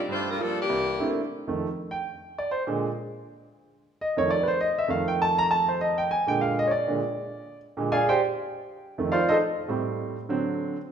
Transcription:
0.09 G2 A3 D4 F4 C5
0.30 G3 D4 F4 A#4
0.38 G3 A#3 F4
0.42 F3 A#3 D4 A4
0.61 E3 A#3 D4 G4
0.69 C2
0.99 A3 A#3 C4 D4 E4
1.48 F2 D#3 A3
1.91 G5
2.38 D5
2.51 C5
2.67 A#2 D3 G#3
4.01 D#5
4.17 F2 D#3 A3 C#5
4.30 D5
4.43 B4
4.48 C5
4.61 D#5
4.79 E5
4.88 F2 D#3 A3 F5
5.08 G5
5.22 A5
5.39 A#5
5.51 A5
5.68 C5
5.81 D#5
5.98 G5
6.11 G#5
6.27 A#2 D3 G#3 G5
6.41 F5
6.59 D#5
6.67 C#5 D5
6.88 A#2 D3 G#3
7.77 A#2 D3 G#3
7.92 G#4 D5 F5 G#5
8.09 G4 C5 D5 G5
8.98 F2 D#3 A3
9.12 F4 C5 D5 F5
9.29 D#4 A4 C5 D#5
9.69 A2 G3 C4
10.29 D3 F#3 C4

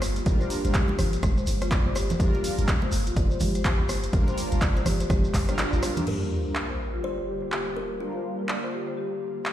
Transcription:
Already playing: G1 D3 G3 A#3 F4 G4
0.02 cross-stick, open hi-hat, muted conga, shekere
0.16 F4, closed hi-hat, shekere
0.26 G1 G3 D4 F4 A#4 D5, kick, closed hi-hat, high conga, shekere
0.40 C5, muted conga, shekere
0.50 G4, open hi-hat, shekere
0.65 G1 G3 D4 F4 A#4 C5, closed hi-hat, muted conga, high conga, shekere
0.74 G4, kick, clap, closed hi-hat, shekere
0.88 muted conga, high conga
0.99 G1, cross-stick, open hi-hat, low conga, shekere
1.13 closed hi-hat, muted conga, shekere
1.23 F1, kick, cross-stick, closed hi-hat, high conga, low conga, shekere
1.37 C5, shekere
1.47 G1, open hi-hat, muted conga, high conga, shekere
1.61 F4, cross-stick, closed hi-hat, shekere
1.71 D5, kick, clap, closed hi-hat, muted conga, high conga, shekere
1.86 G1 C5
1.95 G4, cross-stick, open hi-hat, muted conga, shekere
2.10 C5, closed hi-hat, low conga, shekere
2.20 G1 G3 D4 F4 G4 A#4 C5, kick, closed hi-hat, high conga, shekere
2.34 muted conga, shekere
2.44 open hi-hat, shekere
2.58 G1 G3 D4 F4 A#4, closed hi-hat, muted conga, high conga, shekere
2.68 kick, clap, closed hi-hat, shekere
2.82 C5, muted conga, high conga
2.92 G1, open hi-hat, shekere
3.07 F4, closed hi-hat, muted conga, shekere
3.16 F1 D5, kick, closed hi-hat, shekere
3.31 C5, shekere
3.40 G1 G4, open hi-hat, muted conga, high conga, low conga, shekere
3.55 C5, closed hi-hat, shekere
3.64 kick, clap, closed hi-hat, muted conga, shekere
3.80 G1
3.89 cross-stick, open hi-hat, muted conga, shekere
4.03 closed hi-hat, shekere
4.13 G1 G3 D4 F4 A#4, kick, closed hi-hat, high conga, shekere
4.28 C5, muted conga, shekere
4.38 open hi-hat, shekere
4.52 G1 G3 D4 F4 A#4, closed hi-hat, muted conga, high conga, shekere
4.61 D5, kick, clap, closed hi-hat, shekere
4.76 C5, muted conga, high conga, shekere
4.86 G1 G4, cross-stick, open hi-hat, low conga, shekere
5.00 C5, closed hi-hat, muted conga, shekere
5.10 F1 G4, kick, cross-stick, closed hi-hat, high conga, low conga, shekere
5.24 shekere
5.34 G1, kick, clap, open hi-hat, muted conga, high conga, shekere
5.49 G3 D4 F4 A#4 C5, cross-stick, closed hi-hat, shekere
5.58 D5, clap, closed hi-hat, muted conga, high conga, shekere
5.73 G1 F4, shekere
5.83 cross-stick, open hi-hat, muted conga, shekere
5.96 D4, closed hi-hat, low conga, shekere
6.07 D3 G3 A#3 D4 F4 G4 A#4, crash, sub drop
6.46 G3 D4 F4 A#4
6.55 clap
6.70 C5
6.94 F4
7.04 C5 D5
7.18 C5
7.28 G4
7.42 C5
7.52 G4, clap
7.77 A#4
8.00 G3 D4 F4 A#4
8.15 C5
8.39 G3 D4 F4 A#4
8.49 D5, clap
8.63 C5
8.73 G4
8.87 C5
8.97 G4
9.46 clap

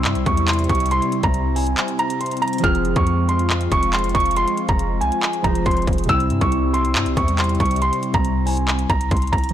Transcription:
Already playing: C3 G3 C4 E4 C6
0.05 G2, clap, closed hi-hat
0.15 C2, closed hi-hat
0.26 E2 C#6, kick, closed hi-hat
0.37 closed hi-hat
0.48 C6, clap, closed hi-hat
0.53 closed hi-hat
0.59 closed hi-hat
0.64 closed hi-hat
0.69 C2 C#6, kick, closed hi-hat
0.75 closed hi-hat
0.80 closed hi-hat
0.86 closed hi-hat
0.91 C6, closed hi-hat
1.02 closed hi-hat
1.12 closed hi-hat
1.23 C2 A#5, kick, closed hi-hat
1.34 closed hi-hat
1.56 G#5, open hi-hat
1.67 closed hi-hat
1.77 clap, closed hi-hat
1.88 closed hi-hat
1.99 A#5, closed hi-hat
2.10 closed hi-hat
2.21 C6, closed hi-hat
2.26 closed hi-hat
2.31 closed hi-hat
2.37 closed hi-hat
2.42 A#5, closed hi-hat
2.48 closed hi-hat
2.53 closed hi-hat
2.58 F3 F4, closed hi-hat
2.64 F1 G#3 C4 F4 G#4 F6, kick, closed hi-hat
2.75 closed hi-hat
2.85 closed hi-hat
2.96 F2 C#6, kick, closed hi-hat
3.07 closed hi-hat
3.29 C6, closed hi-hat
3.39 closed hi-hat
3.50 clap, closed hi-hat
3.61 closed hi-hat
3.72 F1 C#6, kick, closed hi-hat
3.83 closed hi-hat
3.93 E1 C6, clap, closed hi-hat
3.99 closed hi-hat
4.04 F1, closed hi-hat
4.09 closed hi-hat
4.15 F1 C#6, kick, closed hi-hat
4.20 closed hi-hat
4.26 closed hi-hat
4.31 closed hi-hat
4.36 C6, closed hi-hat
4.48 closed hi-hat
4.57 closed hi-hat
4.69 F1 A#5, kick, closed hi-hat
4.79 closed hi-hat
5.01 C2 G#5, closed hi-hat
5.12 closed hi-hat
5.23 clap, closed hi-hat
5.33 closed hi-hat
5.43 F1 F3 F4 G#4 C5 A#5, kick, closed hi-hat
5.55 closed hi-hat
5.66 F1 C6, kick, closed hi-hat
5.71 closed hi-hat
5.77 closed hi-hat
5.82 closed hi-hat
5.87 F1, kick, closed hi-hat
5.93 closed hi-hat
5.98 closed hi-hat
6.04 C3, closed hi-hat
6.08 C2 C3 G3 C4 E4 E6, kick, closed hi-hat
6.13 C4
6.20 closed hi-hat
6.30 G2, closed hi-hat
6.41 C2 C#6, kick, closed hi-hat
6.52 closed hi-hat
6.74 C6, closed hi-hat
6.85 closed hi-hat
6.95 G2, clap, closed hi-hat
7.06 C2, closed hi-hat
7.17 E2 C#6, kick, closed hi-hat
7.28 closed hi-hat
7.38 C6, clap, closed hi-hat
7.44 closed hi-hat
7.49 closed hi-hat
7.55 closed hi-hat
7.60 C2 C#6, kick, closed hi-hat
7.66 closed hi-hat
7.71 closed hi-hat
7.76 closed hi-hat
7.82 C6, closed hi-hat
7.93 closed hi-hat
8.03 closed hi-hat
8.14 C2 A#5, kick, closed hi-hat
8.25 closed hi-hat
8.46 G#5, open hi-hat
8.57 closed hi-hat
8.68 clap, closed hi-hat
8.79 closed hi-hat
8.90 C2 A#5, kick, closed hi-hat
9.01 closed hi-hat
9.11 C2 C6, kick, closed hi-hat
9.17 closed hi-hat
9.22 closed hi-hat
9.27 closed hi-hat
9.32 C2 A#5, kick, closed hi-hat
9.38 closed hi-hat
9.44 closed hi-hat
9.49 closed hi-hat

